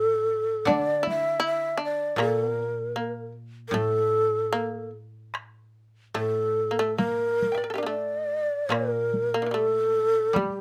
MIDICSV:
0, 0, Header, 1, 5, 480
1, 0, Start_track
1, 0, Tempo, 762389
1, 1379, Time_signature, 4, 2, 24, 8
1, 1858, Tempo, 786370
1, 2818, Tempo, 821918
1, 4258, Tempo, 867052
1, 5218, Tempo, 811908
1, 6333, End_track
2, 0, Start_track
2, 0, Title_t, "Shakuhachi"
2, 0, Program_c, 0, 77
2, 0, Note_on_c, 0, 69, 88
2, 432, Note_on_c, 0, 74, 80
2, 441, Note_off_c, 0, 69, 0
2, 671, Note_off_c, 0, 74, 0
2, 691, Note_on_c, 0, 76, 82
2, 901, Note_off_c, 0, 76, 0
2, 918, Note_on_c, 0, 76, 83
2, 1132, Note_off_c, 0, 76, 0
2, 1160, Note_on_c, 0, 74, 78
2, 1372, Note_off_c, 0, 74, 0
2, 1384, Note_on_c, 0, 69, 77
2, 1548, Note_off_c, 0, 69, 0
2, 1548, Note_on_c, 0, 70, 77
2, 2074, Note_off_c, 0, 70, 0
2, 2303, Note_on_c, 0, 70, 76
2, 2342, Note_on_c, 0, 69, 95
2, 2351, Note_off_c, 0, 70, 0
2, 3058, Note_off_c, 0, 69, 0
2, 3781, Note_on_c, 0, 69, 79
2, 4240, Note_off_c, 0, 69, 0
2, 4246, Note_on_c, 0, 70, 86
2, 4672, Note_off_c, 0, 70, 0
2, 4686, Note_on_c, 0, 70, 44
2, 4736, Note_off_c, 0, 70, 0
2, 4754, Note_on_c, 0, 74, 81
2, 5226, Note_on_c, 0, 70, 79
2, 5235, Note_off_c, 0, 74, 0
2, 5712, Note_on_c, 0, 69, 74
2, 5721, Note_off_c, 0, 70, 0
2, 6191, Note_on_c, 0, 67, 66
2, 6200, Note_off_c, 0, 69, 0
2, 6333, Note_off_c, 0, 67, 0
2, 6333, End_track
3, 0, Start_track
3, 0, Title_t, "Shamisen"
3, 0, Program_c, 1, 106
3, 0, Note_on_c, 1, 57, 56
3, 402, Note_off_c, 1, 57, 0
3, 423, Note_on_c, 1, 62, 64
3, 646, Note_off_c, 1, 62, 0
3, 648, Note_on_c, 1, 64, 61
3, 871, Note_off_c, 1, 64, 0
3, 879, Note_on_c, 1, 64, 75
3, 1111, Note_off_c, 1, 64, 0
3, 1118, Note_on_c, 1, 62, 70
3, 1349, Note_off_c, 1, 62, 0
3, 1374, Note_on_c, 1, 58, 66
3, 1832, Note_off_c, 1, 58, 0
3, 1863, Note_on_c, 1, 58, 52
3, 2081, Note_off_c, 1, 58, 0
3, 2339, Note_on_c, 1, 57, 58
3, 2797, Note_off_c, 1, 57, 0
3, 2819, Note_on_c, 1, 58, 78
3, 3038, Note_off_c, 1, 58, 0
3, 3766, Note_on_c, 1, 57, 60
3, 4078, Note_off_c, 1, 57, 0
3, 4095, Note_on_c, 1, 58, 44
3, 4130, Note_off_c, 1, 58, 0
3, 4143, Note_on_c, 1, 57, 72
3, 4253, Note_off_c, 1, 57, 0
3, 4255, Note_on_c, 1, 58, 52
3, 4551, Note_on_c, 1, 79, 22
3, 4564, Note_off_c, 1, 58, 0
3, 4566, Note_on_c, 1, 76, 22
3, 4580, Note_off_c, 1, 76, 0
3, 4583, Note_on_c, 1, 74, 26
3, 4617, Note_on_c, 1, 70, 27
3, 4636, Note_off_c, 1, 79, 0
3, 4649, Note_off_c, 1, 74, 0
3, 4652, Note_on_c, 1, 69, 29
3, 4670, Note_off_c, 1, 69, 0
3, 4672, Note_on_c, 1, 67, 30
3, 4679, Note_off_c, 1, 70, 0
3, 4682, Note_on_c, 1, 64, 29
3, 4694, Note_off_c, 1, 64, 0
3, 4696, Note_on_c, 1, 62, 31
3, 4719, Note_off_c, 1, 67, 0
3, 4721, Note_on_c, 1, 58, 37
3, 4740, Note_off_c, 1, 58, 0
3, 4743, Note_on_c, 1, 57, 58
3, 4783, Note_off_c, 1, 62, 0
3, 5081, Note_off_c, 1, 57, 0
3, 5207, Note_on_c, 1, 58, 57
3, 5553, Note_off_c, 1, 58, 0
3, 5584, Note_on_c, 1, 58, 61
3, 5630, Note_on_c, 1, 50, 29
3, 5654, Note_off_c, 1, 50, 0
3, 5656, Note_on_c, 1, 52, 32
3, 5682, Note_off_c, 1, 52, 0
3, 5684, Note_on_c, 1, 55, 30
3, 5696, Note_off_c, 1, 58, 0
3, 5701, Note_on_c, 1, 57, 56
3, 5767, Note_off_c, 1, 55, 0
3, 6157, Note_off_c, 1, 57, 0
3, 6187, Note_on_c, 1, 55, 51
3, 6333, Note_off_c, 1, 55, 0
3, 6333, End_track
4, 0, Start_track
4, 0, Title_t, "Koto"
4, 0, Program_c, 2, 107
4, 0, Note_on_c, 2, 45, 50
4, 412, Note_on_c, 2, 50, 56
4, 424, Note_off_c, 2, 45, 0
4, 1362, Note_on_c, 2, 46, 53
4, 1853, Note_off_c, 2, 50, 0
4, 2322, Note_on_c, 2, 45, 57
4, 2327, Note_off_c, 2, 46, 0
4, 3757, Note_off_c, 2, 45, 0
4, 3764, Note_on_c, 2, 45, 47
4, 5200, Note_on_c, 2, 46, 45
4, 5215, Note_off_c, 2, 45, 0
4, 6169, Note_on_c, 2, 55, 49
4, 6333, Note_off_c, 2, 46, 0
4, 6333, Note_off_c, 2, 55, 0
4, 6333, End_track
5, 0, Start_track
5, 0, Title_t, "Taiko and cinematic ensemble drums"
5, 429, Note_on_c, 9, 48, 55
5, 492, Note_off_c, 9, 48, 0
5, 675, Note_on_c, 9, 48, 40
5, 738, Note_off_c, 9, 48, 0
5, 1381, Note_on_c, 9, 37, 51
5, 1443, Note_off_c, 9, 37, 0
5, 2337, Note_on_c, 9, 48, 49
5, 2398, Note_off_c, 9, 48, 0
5, 3294, Note_on_c, 9, 37, 48
5, 3352, Note_off_c, 9, 37, 0
5, 4258, Note_on_c, 9, 48, 45
5, 4313, Note_off_c, 9, 48, 0
5, 4499, Note_on_c, 9, 48, 35
5, 4554, Note_off_c, 9, 48, 0
5, 5218, Note_on_c, 9, 37, 54
5, 5277, Note_off_c, 9, 37, 0
5, 5461, Note_on_c, 9, 48, 36
5, 5520, Note_off_c, 9, 48, 0
5, 6185, Note_on_c, 9, 48, 54
5, 6244, Note_off_c, 9, 48, 0
5, 6333, End_track
0, 0, End_of_file